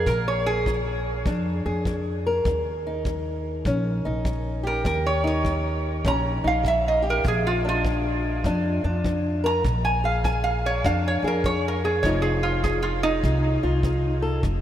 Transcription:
Already playing: A#4
0.06 A#1 A#2 A#4, kick
0.28 C#5
0.46 G#4
0.66 F3, kick
1.26 F2 F3 D4, kick
1.66 F2 G#4
1.85 F3, kick
2.27 A#4
2.45 D#2 D#3, kick
2.87 D#4
3.05 G3, kick
3.65 A#1 D#3 C#4, kick
4.05 A#1 D#4
4.25 G3, kick
4.63 G4 A#4
4.84 D#2 D#3 A#4, kick
5.06 C#5
5.24 D#4 C#5
5.44 G3, kick
6.05 A#1 D#3 C#4 A#5, kick
6.44 A#1 D#4 F5
6.63 G3, kick
6.68 E5
6.88 D#5
7.02 G4
7.10 A#4
7.24 A#1 A#2, kick
7.28 G#4
7.47 F4
7.65 D4
7.69 F4
7.84 F3, kick
8.44 F2 F3 D4, kick
8.84 F2 D4
9.05 F3, kick
9.44 A#4 A#5
9.65 A#1 A#2, kick
9.85 G#5
10.04 G#4 F5
10.24 F3 G#5, kick
10.44 F5
10.66 C#5
10.85 F2 F3 D4 F5, kick
11.08 C#5
11.23 F2 G#4
11.27 A#4
11.44 F3 C#5, kick
11.68 A#4
11.85 G#4
12.03 F1 F2 F3 D#4 F4 C#5, kick
12.22 G#4
12.43 F4
12.64 F3 G#4, kick
12.83 F4
13.03 D#4
13.24 C2 C3 D#4, kick
13.63 C2 F4
13.83 F3, kick
14.22 A4
14.43 F1 F2, kick

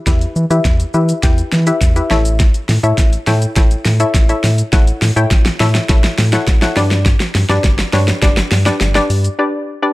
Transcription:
0.07 E2 E4 G4 B4 E5, kick, snare, closed hi-hat, shaker
0.21 closed hi-hat, shaker
0.36 E3, shaker
0.50 E3 E4 G4 B4 E5, closed hi-hat, shaker
0.65 E2, kick, snare, closed hi-hat, shaker
0.80 closed hi-hat, shaker
0.94 E3 E4 G4 B4 E5, shaker
1.09 closed hi-hat, shaker
1.23 E2 E4 G4 B4 G5, kick, snare, closed hi-hat, shaker
1.38 closed hi-hat, shaker
1.52 E3, snare, shaker
1.67 E4 G4 B4 E5, closed hi-hat, shaker
1.81 E2, kick, snare, closed hi-hat, shaker
1.96 E4 G4 B4 E5, closed hi-hat, shaker
2.11 A1 E4 A4 C#5 E5, snare, shaker
2.25 closed hi-hat, shaker
2.40 kick, snare, closed hi-hat, shaker
2.54 closed hi-hat, shaker
2.69 A2, snare, open hi-hat, shaker
2.83 A2 E4 A4 C#5 E5, closed hi-hat, shaker
2.98 A1, kick, snare, closed hi-hat, shaker
3.13 closed hi-hat, shaker
3.27 A2 E4 A4 C#5 G5, snare, open hi-hat, shaker
3.42 closed hi-hat, shaker
3.56 A1 E4 A4 C#5 G5, kick, snare, closed hi-hat, shaker
3.71 closed hi-hat, shaker
3.85 A2, snare, open hi-hat, shaker
4.00 E4 A4 C#5 E5, closed hi-hat, shaker
4.14 A1, kick, snare, closed hi-hat, shaker
4.29 E4 A4 C#5 E5, closed hi-hat, shaker
4.44 A2, snare, open hi-hat, shaker
4.58 closed hi-hat, shaker
4.73 A1 E4 A4 C#5 F#5, kick, snare, closed hi-hat, shaker
4.87 closed hi-hat, shaker
5.02 A2, snare, open hi-hat, shaker
5.16 A2 E4 A4 C#5 G5, closed hi-hat, shaker
5.31 A1, kick, snare, closed hi-hat, shaker
5.46 snare, closed hi-hat, shaker
5.60 A2 E4 A4 C#5 E5, snare, open hi-hat, shaker
5.75 snare, closed hi-hat, shaker
5.89 A1 E4 A4 C#5 E5, kick, snare, closed hi-hat, shaker
6.04 snare, closed hi-hat, shaker
6.18 A2, snare, open hi-hat, shaker
6.33 E4 A4 C#5 F#5, snare, closed hi-hat, shaker
6.47 A1, kick, snare, closed hi-hat, shaker
6.62 E4 A4 C#5 F#5, snare, closed hi-hat, shaker
6.76 G2 D4 G4 B4 D5, snare, open hi-hat, shaker
6.91 snare, closed hi-hat, shaker
7.06 kick, snare, closed hi-hat, shaker
7.20 snare, closed hi-hat, shaker
7.35 G2, snare, open hi-hat, shaker
7.49 G2 D4 G4 B4 D5, snare, closed hi-hat, shaker
7.64 G1, kick, snare, closed hi-hat, shaker
7.79 snare, closed hi-hat, shaker
7.93 G2 D4 G4 B4 C#5, snare, open hi-hat, shaker
8.08 snare, closed hi-hat, shaker
8.22 G1 D4 G4 B4 D5, kick, snare, closed hi-hat, shaker
8.37 snare, closed hi-hat, shaker
8.51 G2, snare, open hi-hat, shaker
8.66 D4 G4 B4 D5, snare, closed hi-hat, shaker
8.81 G1, snare, closed hi-hat, shaker
8.95 D4 G4 B4 D5, snare, closed hi-hat, shaker
9.10 G2, open hi-hat, shaker
9.24 closed hi-hat, shaker
9.39 D4 G4 B4 D5
9.82 D4 G4 B4 D5

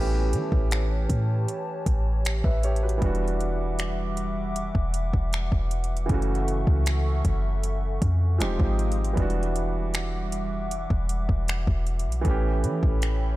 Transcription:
Already playing: A1 E3 A3 B3 C#4 G4 B4 C#5 A5
0.00 G4
0.33 E3, closed hi-hat
0.52 A1, kick
0.71 finger snap, closed hi-hat
1.10 A2, kick, closed hi-hat
1.48 closed hi-hat
1.86 A1, kick, closed hi-hat
2.25 finger snap, closed hi-hat
2.44 A1 B4 E5, kick
2.63 G4 C#5, closed hi-hat
2.76 closed hi-hat
2.83 F#4 B4
2.89 closed hi-hat
2.98 E3 G3
3.02 E1 G3 B3 D4 E5 F#5 D6, kick, closed hi-hat
3.06 F#4
3.15 closed hi-hat
3.28 closed hi-hat
3.40 closed hi-hat
3.79 finger snap, closed hi-hat
4.17 closed hi-hat
4.56 closed hi-hat
4.75 E1, kick
4.94 closed hi-hat
5.13 E1, kick
5.33 finger snap, closed hi-hat
5.52 E1, kick
5.71 closed hi-hat
5.84 closed hi-hat
5.97 closed hi-hat
6.06 F#1 C#3 E3 A3 A4 E5 C#6, kick, closed hi-hat
6.12 C#4 F#4
6.22 closed hi-hat
6.35 closed hi-hat
6.48 closed hi-hat
6.67 C#2, kick
6.86 finger snap, closed hi-hat
7.25 F#1, kick, closed hi-hat
7.63 closed hi-hat
8.02 F2, kick, closed hi-hat
8.38 D#1 F3 G#3 C4 D#4 F5 G5 D#6, finger snap, closed hi-hat
8.43 G4
8.60 G#1, kick
8.79 closed hi-hat
8.92 closed hi-hat
9.05 closed hi-hat
9.13 E1 E3 G3 E5 F#5, kick, closed hi-hat
9.18 G3 B3 D4 D6
9.22 F#4
9.30 closed hi-hat
9.43 closed hi-hat
9.56 closed hi-hat
9.94 finger snap, closed hi-hat
10.32 closed hi-hat
10.71 closed hi-hat
10.90 E1, kick
11.09 closed hi-hat
11.29 E1, kick
11.48 finger snap, closed hi-hat
11.67 E1, kick
11.87 closed hi-hat
11.99 closed hi-hat
12.06 B1
12.12 closed hi-hat
12.21 A1 E3 A3 B3 A4 C#5 G5 B5, kick, closed hi-hat
12.28 C#4 G4
12.64 E3, closed hi-hat
12.83 A1, kick
13.02 finger snap, closed hi-hat

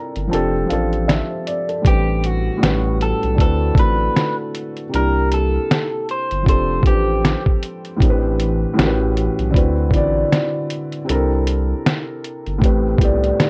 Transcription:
Already playing: C3 C4 D4 E4 A4 A#4 A#5
0.16 G1, closed hi-hat
0.28 F3 C4 D4 A5
0.33 F1 G4 A4, closed hi-hat
0.66 F3 C4 D4 F5
0.70 A1 G4 A4, closed hi-hat
0.93 closed hi-hat
1.08 E5, snare, closed hi-hat
1.30 C5
1.47 D5, closed hi-hat
1.69 A4, closed hi-hat
1.81 A2 E3 G3, kick
1.85 A1 C4 D4 G4 B4, closed hi-hat
2.24 F#4, closed hi-hat
2.57 A2 G3 C#4
2.63 A1 F#4 B4, snare, closed hi-hat
3.01 A4, closed hi-hat
3.23 B1, closed hi-hat
3.35 D3 A3 C4 E4, kick
3.39 D2 F#4 A4 B4, closed hi-hat
3.73 A1 D3 A3 C4, kick
3.77 E4 F#4 A4 B4, closed hi-hat
4.17 snare, closed hi-hat
4.55 closed hi-hat
4.77 closed hi-hat
4.89 C3 A#3 D4
4.94 C2 E4 G4 A#4, closed hi-hat
5.32 A4, closed hi-hat
5.71 snare, closed hi-hat
6.09 C5, closed hi-hat
6.31 G1, closed hi-hat
6.43 F3 C4 D4, kick
6.47 F1 G4 A4 C5, closed hi-hat
6.81 A1 F3 C4 D4, kick
6.86 G4 B4, closed hi-hat
6.95 C5
7.25 snare, closed hi-hat
7.46 kick
7.63 closed hi-hat
7.85 closed hi-hat
7.97 A2 E3 C4 D4, kick
8.01 A1 G4 A#4, closed hi-hat
8.10 B4
8.40 closed hi-hat
8.74 A2 E3 C#4
8.78 A1 F#4 G4 A#4, snare, closed hi-hat
8.87 B4
9.17 closed hi-hat
9.39 B1, closed hi-hat
9.50 D3 C4 E4, kick
9.55 D2 F#4 B4, closed hi-hat
9.89 A1 D3 C4 E4, kick
9.94 F#4 D5, closed hi-hat
10.32 snare, closed hi-hat
10.70 closed hi-hat
10.92 closed hi-hat
11.05 C3 C4 D4
11.09 C2 E4 A4 A#4, closed hi-hat
11.47 closed hi-hat
11.86 snare, closed hi-hat
12.24 closed hi-hat
12.46 G1, closed hi-hat
12.58 A2 A3 C4, kick
12.62 A1 G4 B4, closed hi-hat
12.97 C2 A2 A3 B3, kick
13.01 G4 D5, closed hi-hat
13.07 C4
13.24 closed hi-hat
13.40 snare, closed hi-hat

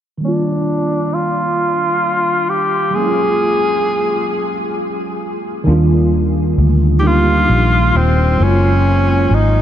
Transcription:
0.18 D#3 G3
0.23 A#3 D4
0.28 F4
1.14 F4
2.49 G4
2.90 F#3 G#3
2.95 A#3 C#4 G#4
3.01 E4
3.08 F4
5.64 D#2 D#3 G3 A#3 D4
5.69 F4
6.58 D2
6.99 G3 D#4 G4
7.03 A#3 D4 F4 G4
7.50 A#1
7.95 D#1 C4
8.37 F#1 F#3 G#3 A#3
8.41 C#4 F4
9.31 G#1 D#4

